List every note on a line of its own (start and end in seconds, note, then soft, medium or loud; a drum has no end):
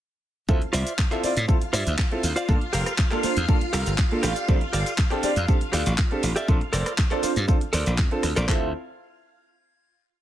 0.48 0.61 D2 medium
0.48 0.55 C4 medium
0.48 0.55 E4 medium
0.48 8.49 F4 medium
0.48 0.55 F4 medium
0.48 0.55 A4 loud
0.48 8.49 F5 medium
0.48 kick loud
0.48 cabasa soft
0.62 muted slap bass stroke soft
0.62 closed hi-hat soft
0.73 0.83 C2 loud
0.73 0.92 F4 loud
0.73 0.92 C5 loud
0.73 0.93 D5 loud
0.73 0.93 E5 loud
0.73 cross-stick medium
0.73 open hi-hat loud
0.73 cabasa medium
0.87 closed hi-hat medium
0.87 cabasa soft
0.99 kick loud
0.99 clap loud
0.99 cabasa soft
1.11 1.20 C4 medium
1.11 1.21 E4 medium
1.11 1.30 F4 medium
1.11 1.21 F4 medium
1.11 1.21 A4 loud
1.11 1.30 C5 medium
1.11 1.30 D5 medium
1.11 1.31 E5 loud
1.11 clap soft
1.11 closed hi-hat medium
1.23 1.30 C4 medium
1.23 1.30 E4 medium
1.23 1.30 F4 medium
1.23 1.30 D5 loud
1.23 muted slap bass stroke soft
1.23 open hi-hat loud
1.23 cabasa medium
1.37 1.45 A2 medium
1.37 closed hi-hat medium
1.37 cabasa soft
1.48 1.55 C4 medium
1.48 1.55 E4 medium
1.48 1.55 F4 medium
1.48 1.55 A4 loud
1.48 muted clean electric guitar stroke soft
1.48 kick loud
1.48 cabasa soft
1.61 muted slap bass stroke soft
1.61 closed hi-hat medium
1.73 1.82 G2 medium
1.73 1.92 F4 loud
1.73 1.92 C5 loud
1.73 1.93 D5 loud
1.73 1.93 E5 loud
1.73 cross-stick medium
1.73 open hi-hat loud
1.73 cabasa medium
1.87 1.95 D2 medium
1.87 closed hi-hat medium
1.87 cabasa soft
1.98 kick loud
1.98 clap loud
1.98 cabasa soft
2.11 2.21 C4 medium
2.11 2.21 E4 medium
2.11 2.21 F4 medium
2.11 2.22 A4 loud
2.11 muted clean electric guitar stroke soft
2.11 closed hi-hat soft
2.23 2.32 D2 loud
2.23 muted clean electric guitar stroke soft
2.23 open hi-hat loud
2.23 cabasa medium
2.36 2.48 F4 medium
2.36 2.48 C5 medium
2.36 2.49 D5 medium
2.36 2.49 F5 loud
2.36 closed hi-hat medium
2.36 cabasa soft
2.48 2.62 G1 loud
2.48 2.55 A#3 medium
2.48 2.55 D4 medium
2.48 2.55 F4 medium
2.48 2.55 A4 loud
2.48 kick loud
2.48 cabasa soft
2.61 muted slap bass stroke soft
2.61 closed hi-hat soft
2.73 2.83 F1 loud
2.73 2.92 G4 loud
2.73 2.92 A4 loud
2.73 2.93 A#4 loud
2.73 2.93 F5 loud
2.73 open hi-hat loud
2.73 cabasa medium
2.86 cross-stick medium
2.86 closed hi-hat medium
2.86 cabasa soft
2.98 kick loud
2.98 clap loud
2.98 cabasa soft
3.11 3.21 A#3 medium
3.11 3.21 D4 medium
3.11 3.21 F4 medium
3.11 3.30 G4 medium
3.11 3.30 A4 medium
3.11 3.21 A4 loud
3.11 3.30 A#4 medium
3.11 3.30 F5 loud
3.11 clap soft
3.11 closed hi-hat medium
3.23 3.30 A#3 medium
3.23 3.30 D4 medium
3.23 3.30 F4 medium
3.23 3.30 C5 medium
3.23 muted slap bass stroke soft
3.23 open hi-hat loud
3.23 cabasa medium
3.37 3.45 E2 loud
3.37 closed hi-hat medium
3.37 cabasa soft
3.48 3.55 A#3 loud
3.48 3.55 D4 medium
3.48 3.55 F4 medium
3.48 3.55 A4 loud
3.48 muted clean electric guitar stroke soft
3.48 kick loud
3.48 cabasa soft
3.61 muted slap bass stroke soft
3.61 closed hi-hat medium
3.73 3.82 C2 medium
3.73 3.92 G4 loud
3.73 3.93 A4 loud
3.73 3.93 A#4 loud
3.73 3.93 F5 loud
3.73 open hi-hat loud
3.73 cabasa medium
3.86 3.95 G1 medium
3.86 closed hi-hat medium
3.86 cabasa soft
3.98 kick loud
3.98 clap loud
3.98 cabasa soft
4.11 4.21 A#3 medium
4.11 4.21 D4 medium
4.11 4.21 F4 medium
4.11 4.22 A4 loud
4.11 muted clean electric guitar stroke soft
4.11 closed hi-hat soft
4.23 4.32 A1 loud
4.23 4.64 G4 loud
4.23 4.64 A4 medium
4.23 4.64 D5 medium
4.23 4.64 F5 loud
4.23 cross-stick medium
4.23 open hi-hat loud
4.23 cabasa medium
4.36 closed hi-hat medium
4.36 cabasa soft
4.48 4.61 A1 loud
4.48 4.55 C4 medium
4.48 4.55 D4 medium
4.48 4.55 G4 medium
4.48 4.55 A4 loud
4.48 kick loud
4.48 cabasa soft
4.61 muted slap bass stroke soft
4.61 closed hi-hat soft
4.73 4.82 G1 loud
4.73 4.92 G4 loud
4.73 4.92 A4 loud
4.73 4.93 D5 loud
4.73 4.93 F5 loud
4.73 cross-stick medium
4.73 open hi-hat loud
4.73 cabasa medium
4.86 closed hi-hat medium
4.86 cabasa soft
4.98 kick loud
4.98 clap loud
4.98 cabasa soft
5.10 5.20 C4 medium
5.10 5.20 D4 medium
5.10 5.30 G4 medium
5.10 5.20 G4 medium
5.10 5.30 A4 medium
5.10 5.21 A4 loud
5.10 5.30 D5 medium
5.10 5.30 G5 loud
5.10 clap soft
5.10 closed hi-hat medium
5.23 5.30 C4 medium
5.23 5.30 D4 medium
5.23 5.30 G4 medium
5.23 5.30 D5 loud
5.23 muted slap bass stroke soft
5.23 open hi-hat loud
5.23 cabasa medium
5.36 5.45 F2 medium
5.36 closed hi-hat medium
5.36 cabasa soft
5.48 5.55 C4 medium
5.48 5.55 D4 medium
5.48 5.55 G4 medium
5.48 5.55 A4 loud
5.48 muted clean electric guitar stroke soft
5.48 kick loud
5.48 cabasa soft
5.61 muted slap bass stroke soft
5.61 closed hi-hat medium
5.73 5.82 D2 medium
5.73 5.92 G4 loud
5.73 5.92 A4 loud
5.73 5.93 D5 loud
5.73 5.93 F5 loud
5.73 cross-stick medium
5.73 open hi-hat loud
5.73 cabasa medium
5.86 5.95 A1 medium
5.86 closed hi-hat medium
5.86 cabasa soft
5.98 kick loud
5.98 clap loud
5.98 cabasa soft
6.11 6.21 C4 medium
6.11 6.21 D4 medium
6.11 6.21 G4 medium
6.11 6.21 A4 loud
6.11 muted clean electric guitar stroke soft
6.11 closed hi-hat soft
6.23 6.32 A1 loud
6.23 muted clean electric guitar stroke soft
6.23 open hi-hat loud
6.23 cabasa medium
6.36 6.48 G4 medium
6.36 6.48 A4 medium
6.36 6.49 D5 medium
6.36 6.49 E5 medium
6.36 closed hi-hat medium
6.36 cabasa soft
6.48 6.61 A#1 loud
6.48 6.55 C4 loud
6.48 6.55 D4 medium
6.48 6.55 F4 medium
6.48 6.55 A4 loud
6.48 kick loud
6.48 cabasa soft
6.61 muted slap bass stroke soft
6.61 closed hi-hat soft
6.73 6.82 F1 loud
6.73 6.92 A4 loud
6.73 6.92 A#4 loud
6.73 6.93 C5 loud
6.73 6.93 D5 loud
6.73 cross-stick medium
6.73 open hi-hat loud
6.73 cabasa medium
6.86 cross-stick medium
6.86 closed hi-hat medium
6.86 cabasa soft
6.98 kick loud
6.98 clap loud
6.98 cabasa soft
7.11 7.20 C4 medium
7.11 7.20 D4 medium
7.11 7.21 F4 medium
7.11 7.30 A4 medium
7.11 7.21 A4 loud
7.11 7.30 A#4 medium
7.11 7.30 C5 medium
7.11 7.30 D5 loud
7.11 clap soft
7.11 closed hi-hat medium
7.22 7.30 C4 medium
7.22 7.30 D4 medium
7.22 7.30 F4 medium
7.22 7.30 C5 loud
7.22 muted slap bass stroke soft
7.22 open hi-hat loud
7.22 cabasa medium
7.36 7.45 G2 medium
7.36 closed hi-hat medium
7.36 cabasa soft
7.48 7.55 C4 medium
7.48 7.55 D4 medium
7.48 7.55 F4 medium
7.48 7.55 A4 loud
7.48 muted clean electric guitar stroke soft
7.48 kick loud
7.48 cabasa soft
7.61 muted slap bass stroke soft
7.61 closed hi-hat medium
7.73 7.82 D2 medium
7.73 7.92 A4 loud
7.73 7.92 A#4 loud
7.73 7.93 C5 loud
7.73 7.93 D5 loud
7.73 open hi-hat loud
7.73 cabasa medium
7.86 8.00 A#1 medium
7.86 closed hi-hat medium
7.86 cabasa soft
7.98 8.07 F2 loud
7.98 kick loud
7.98 clap loud
7.98 cabasa soft
8.11 8.21 C4 medium
8.11 8.21 D4 medium
8.11 8.21 F4 medium
8.11 8.21 A4 loud
8.11 muted clean electric guitar stroke soft
8.11 closed hi-hat soft
8.23 8.33 D2 medium
8.23 muted clean electric guitar stroke soft
8.23 cross-stick medium
8.23 open hi-hat loud
8.23 cabasa medium
8.36 8.45 A#1 loud
8.36 8.48 A4 medium
8.36 8.49 A#4 medium
8.36 8.48 C5 medium
8.36 8.49 D5 loud
8.36 closed hi-hat medium
8.36 cabasa soft
8.47 8.67 C4 medium
8.47 8.67 E4 medium
8.47 8.72 F4 medium
8.47 8.68 F4 medium
8.47 8.68 A4 medium
8.47 8.72 E5 medium
8.47 kick loud
8.47 clap medium